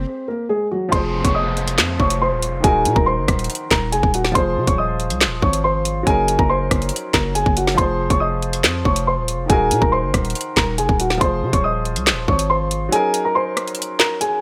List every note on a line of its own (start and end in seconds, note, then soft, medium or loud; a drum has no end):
0.00 0.25 C4 medium
0.00 0.24 C5 medium
0.28 0.45 A#3 medium
0.28 0.45 A#4 medium
0.49 0.67 G#3 medium
0.49 0.66 G#4 medium
0.71 0.89 F#3 medium
0.71 0.88 F#4 medium
0.89 1.23 F1 loud
0.89 2.59 F3 medium
0.89 2.60 F4 medium
0.89 1.22 C6 loud
0.89 kick loud
0.89 closed hi-hat medium
0.89 downlifter medium
0.93 2.61 G#4 medium
0.93 1.23 C5 medium
0.93 2.62 C5 medium
1.25 1.80 F1 loud
1.25 1.34 C#5 medium
1.25 1.33 C#6 medium
1.25 kick loud
1.25 closed hi-hat medium
1.35 1.96 D#5 medium
1.35 1.95 D#6 medium
1.57 closed hi-hat soft
1.68 closed hi-hat medium
1.78 1.99 F2 loud
1.78 snare loud
1.78 clap medium
1.78 closed hi-hat medium
2.00 2.33 F1 loud
2.00 2.17 C#5 medium
2.00 2.16 C#6 medium
2.00 kick medium
2.10 closed hi-hat medium
2.22 2.62 C5 medium
2.22 2.62 C6 medium
2.32 2.49 D#1 loud
2.42 closed hi-hat medium
2.48 2.63 F1 medium
2.60 2.87 D#1 loud
2.60 4.30 D#3 medium
2.60 4.31 D#4 medium
2.60 2.94 G#5 loud
2.60 kick loud
2.60 closed hi-hat medium
2.65 4.32 F#4 medium
2.65 2.95 G#4 medium
2.65 4.33 A#4 medium
2.85 2.96 A#2 loud
2.85 closed hi-hat medium
2.96 3.19 D#1 loud
2.96 3.05 A#4 medium
2.96 3.04 A#5 medium
2.96 kick loud
3.06 3.67 C5 medium
3.06 3.67 C6 medium
3.18 3.28 F#1 loud
3.28 3.49 D#1 loud
3.28 kick loud
3.28 cross-stick loud
3.28 closed hi-hat medium
3.39 closed hi-hat soft
3.44 closed hi-hat medium
3.50 closed hi-hat medium
3.55 closed hi-hat medium
3.71 3.94 D#1 loud
3.71 3.88 A#4 medium
3.71 3.88 A#5 medium
3.71 kick medium
3.71 snare loud
3.71 clap medium
3.92 4.03 F1 loud
3.92 4.10 G#4 medium
3.92 4.09 G#5 medium
3.92 closed hi-hat medium
4.03 4.34 D#1 loud
4.03 kick medium
4.14 4.31 F#4 medium
4.14 4.31 F#5 medium
4.14 closed hi-hat medium
4.25 snare medium
4.32 4.58 F1 loud
4.32 6.01 F3 medium
4.32 6.03 F4 medium
4.32 4.65 C6 loud
4.32 kick loud
4.32 closed hi-hat medium
4.36 6.04 G#4 medium
4.36 4.66 C5 medium
4.36 6.05 C5 medium
4.57 4.67 C3 loud
4.67 5.12 D#1 loud
4.67 4.76 C#5 medium
4.67 4.76 C#6 medium
4.67 kick loud
4.67 closed hi-hat medium
4.78 5.39 D#5 medium
4.78 5.39 D#6 medium
5.00 closed hi-hat soft
5.10 5.28 C2 loud
5.10 closed hi-hat medium
5.21 snare loud
5.21 clap medium
5.21 closed hi-hat medium
5.26 5.42 D#1 loud
5.42 6.04 G#1 loud
5.42 5.60 C#5 medium
5.42 5.59 C#6 medium
5.42 kick medium
5.53 closed hi-hat medium
5.64 6.05 C5 medium
5.64 6.04 C6 medium
5.85 closed hi-hat medium
6.03 6.38 F#1 loud
6.03 7.73 F#3 medium
6.03 7.74 C#4 medium
6.03 6.37 G#5 loud
6.03 kick loud
6.03 closed hi-hat medium
6.08 7.75 D#4 medium
6.08 6.37 G#4 medium
6.08 7.76 A#4 medium
6.28 closed hi-hat medium
6.39 6.70 F#1 loud
6.39 6.48 A#4 medium
6.39 6.47 A#5 medium
6.39 kick loud
6.49 7.10 C5 medium
6.49 7.10 C6 medium
6.71 6.92 F#1 loud
6.71 kick medium
6.71 cross-stick loud
6.71 closed hi-hat medium
6.82 closed hi-hat soft
6.89 closed hi-hat medium
6.96 closed hi-hat medium
7.14 7.45 F#1 loud
7.14 7.31 A#4 medium
7.14 7.30 A#5 medium
7.14 kick medium
7.14 snare loud
7.14 clap medium
7.35 7.52 G#4 medium
7.35 7.52 G#5 medium
7.35 closed hi-hat medium
7.46 7.77 F#1 loud
7.46 kick loud
7.57 7.74 F#4 medium
7.57 7.74 F#5 medium
7.57 closed hi-hat medium
7.67 snare medium
7.74 8.09 F1 loud
7.74 9.44 F3 medium
7.74 9.45 F4 medium
7.74 8.08 C6 loud
7.74 kick loud
7.74 closed hi-hat medium
7.78 9.47 G#4 medium
7.78 8.09 C5 medium
7.78 9.48 C5 medium
8.10 8.65 F1 loud
8.10 8.19 C#5 medium
8.10 8.19 C#6 loud
8.10 kick loud
8.10 closed hi-hat medium
8.20 8.81 D#5 medium
8.20 8.81 D#6 medium
8.42 closed hi-hat soft
8.53 closed hi-hat medium
8.64 8.84 F2 loud
8.64 snare loud
8.64 clap medium
8.64 closed hi-hat medium
8.85 9.19 F1 loud
8.85 9.03 C#5 medium
8.85 9.02 C#6 medium
8.85 kick medium
8.96 closed hi-hat medium
9.07 9.48 C5 medium
9.07 9.47 C6 medium
9.18 9.35 D#1 loud
9.28 closed hi-hat medium
9.34 9.49 F1 loud
9.46 9.73 D#1 loud
9.46 11.16 D#3 medium
9.46 11.17 D#4 medium
9.46 9.80 G#5 loud
9.46 kick loud
9.46 closed hi-hat medium
9.50 11.18 F#4 medium
9.50 9.80 G#4 medium
9.50 11.19 A#4 medium
9.71 9.81 A#2 loud
9.71 closed hi-hat medium
9.81 10.05 D#1 loud
9.81 9.90 A#4 medium
9.81 9.90 A#5 medium
9.81 kick loud
9.92 10.53 C5 medium
9.92 10.53 C6 medium
10.03 10.13 F#1 loud
10.14 10.35 D#1 loud
10.14 kick medium
10.14 cross-stick loud
10.14 closed hi-hat medium
10.25 closed hi-hat soft
10.30 closed hi-hat medium
10.35 closed hi-hat medium
10.41 closed hi-hat medium
10.57 10.80 D#1 loud
10.57 10.74 A#4 medium
10.57 10.74 A#5 medium
10.57 kick medium
10.57 snare loud
10.57 clap medium
10.78 10.88 F1 loud
10.78 10.95 G#4 medium
10.78 10.95 G#5 medium
10.78 closed hi-hat medium
10.89 11.20 D#1 loud
10.89 kick medium
11.00 11.17 F#4 medium
11.00 11.17 F#5 medium
11.00 closed hi-hat medium
11.10 snare medium
11.17 11.44 F1 loud
11.17 12.87 F3 medium
11.17 12.88 F4 medium
11.17 11.51 C6 loud
11.17 kick loud
11.17 closed hi-hat medium
11.22 12.89 G#4 medium
11.22 11.52 C5 medium
11.22 12.91 C5 medium
11.42 11.53 C3 loud
11.53 11.98 D#1 loud
11.53 11.62 C#5 medium
11.53 11.62 C#6 medium
11.53 kick loud
11.53 closed hi-hat medium
11.64 12.25 D#5 medium
11.64 12.24 D#6 medium
11.85 closed hi-hat soft
11.96 12.14 C2 loud
11.96 closed hi-hat medium
12.07 snare loud
12.07 clap medium
12.07 closed hi-hat medium
12.12 12.27 D#1 loud
12.28 12.90 G#1 loud
12.28 12.46 C#5 medium
12.28 12.45 C#6 medium
12.28 kick medium
12.39 closed hi-hat medium
12.50 12.90 C5 medium
12.50 12.90 C6 medium
12.71 closed hi-hat medium
12.89 14.41 F#3 medium
12.89 14.41 C#4 medium
12.89 13.23 G#5 loud
12.89 closed hi-hat medium
12.93 14.41 D#4 medium
12.93 13.23 G#4 medium
12.93 14.41 A#4 medium
13.14 closed hi-hat medium
13.25 13.34 A#4 medium
13.25 13.33 A#5 medium
13.35 13.96 C5 medium
13.35 13.96 C6 medium
13.57 cross-stick medium
13.57 closed hi-hat medium
13.68 closed hi-hat soft
13.75 closed hi-hat medium
13.82 closed hi-hat medium
13.99 14.17 A#4 medium
13.99 14.16 A#5 medium
13.99 snare loud
13.99 clap medium
14.21 14.38 G#4 medium
14.21 14.38 G#5 medium
14.21 closed hi-hat medium